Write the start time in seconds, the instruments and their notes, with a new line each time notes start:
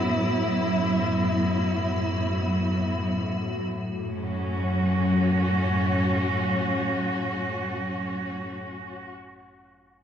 Already playing: synth drone F#2 F#3, cello section A2 F#3 B3 E4, ambient pad F#4
3.71 synth drone F#2 F#3, cello section A2
3.88 cello section F#3
4.07 cello section C#4
4.24 cello section F#4